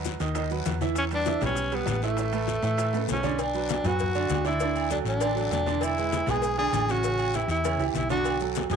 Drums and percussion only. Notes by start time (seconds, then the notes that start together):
0.05 high bongo, high conga, short guiro, maracas
0.20 high timbale, short guiro, maracas
0.35 high bongo, high conga, high timbale, long guiro, maracas
0.50 high conga, maracas
0.65 high bongo, low bongo, high conga, high timbale, short guiro, maracas
0.81 high bongo, high conga, short guiro, maracas
0.95 high bongo, high conga, high timbale, long guiro, maracas
1.11 high bongo, high conga, high timbale, maracas
1.26 high bongo, high conga, short guiro, maracas
1.41 high bongo, high conga, low conga, high timbale, short guiro, maracas
1.55 high bongo, high conga, long guiro, maracas
1.72 high conga, high timbale, maracas
1.86 high bongo, low bongo, high conga, high timbale, low timbale, short guiro, maracas
2.02 short guiro, maracas
2.17 high bongo, high conga, high timbale, long guiro, maracas
2.32 high bongo, high conga, high timbale, maracas
2.47 high bongo, high conga, short guiro, maracas
2.63 high timbale, short guiro, maracas
2.77 high bongo, high conga, high timbale, long guiro, maracas
2.93 high conga, high timbale, maracas
3.08 high bongo, low bongo, high conga, short guiro, maracas
3.13 low timbale
3.23 high bongo, high conga, low timbale, short guiro, maracas
3.39 cowbell, high conga, low agogo, long guiro, maracas
3.54 high conga, maracas
3.69 cowbell, high conga, low agogo, short guiro, maracas
3.84 cowbell, high conga, low conga, low agogo, short guiro, maracas
3.99 cowbell, high conga, low conga, long guiro, maracas
4.14 high conga, low agogo, maracas
4.29 cowbell, high conga, low timbale, low agogo, short guiro, maracas
4.45 cowbell, high conga, short guiro, maracas
4.60 cowbell, high conga, low agogo, long guiro, maracas
4.76 high conga, low agogo, maracas
4.90 cowbell, high conga, short guiro, maracas
5.05 short guiro, maracas
5.20 cowbell, high conga, low agogo, long guiro, maracas
5.36 high conga, low agogo, maracas
5.51 cowbell, high conga, low timbale, low agogo, short guiro, maracas
5.66 high conga, short guiro, maracas
5.81 cowbell, high conga, low agogo, long guiro, maracas
5.98 high conga, maracas
6.12 cowbell, high conga, low agogo, short guiro, maracas
6.26 cowbell, high conga, low conga, low agogo, short guiro, maracas
6.42 cowbell, high conga, long guiro, maracas
6.57 high conga, low agogo, maracas
6.73 cowbell, high conga, low timbale, low agogo, short guiro, maracas
6.88 cowbell, high conga, short guiro, maracas
7.03 cowbell, high conga, low agogo, long guiro, maracas
7.19 high conga, low agogo, maracas
7.33 cowbell, high conga, short guiro, maracas
7.48 short guiro, maracas
7.64 cowbell, high conga, low agogo, long guiro, maracas
7.80 high conga, low agogo, maracas
7.95 cowbell, high conga, low timbale, low agogo, short guiro, maracas
8.09 high conga, short guiro, maracas
8.24 cowbell, high conga, low agogo, long guiro, maracas
8.40 high conga, maracas
8.55 cowbell, high conga, low agogo, short guiro, maracas
8.70 cowbell, high conga, low conga, low agogo, short guiro, maracas